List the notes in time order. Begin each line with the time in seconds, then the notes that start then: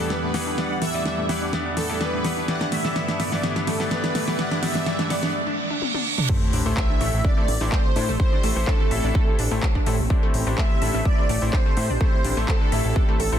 Already playing: E2 E3 G3 D4 A4 F#5, riser
0.00 E3 B3 E4 G4 D5
0.10 D4 B4, snare
0.23 A3
0.34 E3 B3 E4 G4 F#5, snare, open hi-hat
0.47 D4
0.58 E3 B3 E4 G4 D5 F#5, snare
0.70 D4
0.81 A3 E5, snare, open hi-hat
0.94 E3 B3 E4 G4 D5
1.05 D4, snare
1.18 A3
1.29 E3 B3 E4 G4 D5 F#5, snare, open hi-hat
1.42 D4
1.53 E3 B3 E4 G4 D5, snare
1.66 D4
1.77 A3 A4, snare, open hi-hat
1.89 E3 B3 E4 G4 D5
2.01 D4 B4, snare
2.13 A3
2.25 E3 B3 E4 G4 F#5, snare, open hi-hat
2.37 D4
2.48 G2 D3 E3 A3 B3 E4 G4 D5 F#5, snare
2.61 D4, snare
2.72 A3 E5, snare, open hi-hat
2.85 E3 B3 E4 G4 D5, snare
2.96 E3 B3 E4 G4 D5, snare
3.08 D4, snare
3.20 A3 D5, snare, open hi-hat
3.32 E3 B3 E4 G4 D5, snare
3.43 E3 B3 E4 G4 D5, snare
3.56 D4, snare
3.67 A3 A4, snare, open hi-hat
3.80 E3 B3 E4 G4 D5, snare
3.91 E3 B3 E4 G4 B4 D5, snare
4.04 D4, snare
4.15 A3, snare, open hi-hat
4.28 E3 B3 E4 G4 D5, snare
4.39 E3 B3 E4 G4 D5 F#5, snare
4.51 D4, snare
4.62 E3 B3 E4 G4 D5 E5, snare, open hi-hat
4.75 D4, snare
4.86 E3 B3 E4 G4 D5, snare
4.99 D4, snare
5.10 E3 B3 E4 G4 D5, snare, open hi-hat
5.23 D4, snare
5.34 reverse cymbal
5.47 D4
5.70 D4
5.82 high tom
5.94 D4, high tom
6.18 D4, mid tom
6.29 A2 A3 C4 E4 G4 A4 C5, kick, crash, sub drop
6.53 A1 D4 D5, open hi-hat
6.66 A1 A2 A3 E4 G4 A4 C5
6.77 E5, kick, clap
6.90 D4 D5
7.01 A1 A2 A3 E4 G4 A4 E5, open hi-hat
7.13 A1
7.25 D4 D5, kick
7.37 A2 A3 E4 G4 A4 C5
7.48 A1, open hi-hat
7.61 A1 A2 A3 D4 E4 G4 C5 D5
7.72 A3 A4 C5, kick, clap
7.96 A2 A3 D4 E4 G4 C5 D5, open hi-hat
8.09 A1 A3 A4
8.20 A2 A3 E4 G4 C5, kick
8.33 D4 D5
8.43 A1 A3 A4, open hi-hat
8.56 A1 A2 A3 E4 G4 C5
8.67 D4 A4 D5, kick, clap
8.80 A3 A4
8.91 A1 A2 A3 E4 G4 E5, open hi-hat
9.04 A1 D4 D5
9.15 A3 A4, kick
9.28 A2 A3 E4 G4 C5
9.39 A1 D4 D5, open hi-hat
9.51 A1 A2 A3 E4 G4 A4 C5
9.63 kick, clap
9.75 D4 D5, kick
9.86 A2 A3 E4 G4 A4 C5, open hi-hat
9.99 A1
10.10 A2 A3 D4 E4 G4 C5 D5, kick
10.23 A3 A4
10.34 A1, open hi-hat
10.47 A1 A2 A3 D4 E4 G4 C5 D5
10.58 A3 A4 E5, kick, clap
10.82 A1 A2 A3 D4 E4 G4 D5 E5, open hi-hat
10.94 A1 A3 A4
11.05 D5, kick
11.18 A2 A3 D4 E4 G4 C5 D5
11.29 A1 A3 A4, open hi-hat
11.42 A1 A2 A3 E4 G4 C5
11.53 D4 C5 D5, kick, clap
11.66 A3 A4
11.77 A2 A3 E4 G4 C5, open hi-hat
11.89 A1 D4 D5
12.00 A2 A3 E4 G4 A4 C5, kick
12.24 A1 D4 D5, open hi-hat
12.37 A1 A2 A3 E4 G4 A4 C5
12.48 A4, kick, clap
12.61 D4 D5
12.72 A1 A2 A3 E4 G4 A4 E5, open hi-hat
12.85 A1
12.96 D4 D5, kick
13.09 A2 A3 E4 G4 A4 C5
13.20 A1 A4 A5, open hi-hat
13.32 A1 A2 A3 E4 G4 A4 C5 A5